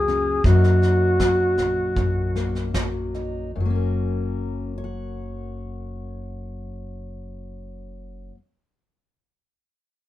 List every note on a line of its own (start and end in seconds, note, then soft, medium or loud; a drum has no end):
0.00 0.40 C#2 medium
0.00 0.44 F#2 medium
0.00 0.44 F#3 soft
0.00 0.46 A#3 soft
0.00 0.41 G#4 medium
0.08 0.45 C#4 soft
0.08 snare soft
0.44 1.54 F#2 medium
0.44 1.96 F#2 medium
0.44 1.19 F#3 soft
0.44 2.34 A#3 soft
0.44 3.13 D#4 soft
0.44 2.71 F#4 medium
0.44 kick medium
0.44 snare soft
0.64 snare soft
0.82 snare soft
1.20 2.73 F#3 soft
1.20 kick medium
1.20 snare medium
1.57 1.94 A#1 medium
1.57 snare soft
1.96 3.51 A#1 medium
1.96 3.54 F#2 soft
1.96 kick medium
1.96 snare soft
2.35 3.51 A#3 soft
2.35 snare soft
2.55 snare soft
2.74 3.50 F#3 soft
2.74 kick medium
2.74 snare medium
3.14 3.50 D#4 soft
3.14 snare soft
3.55 8.28 F#1 medium
3.55 8.32 F#2 soft
3.60 8.34 F#3 soft
3.65 8.37 A#3 soft
3.70 4.77 C#4 soft
3.75 4.84 A#4 soft
4.78 8.32 C#5 medium
4.84 8.35 F#5 medium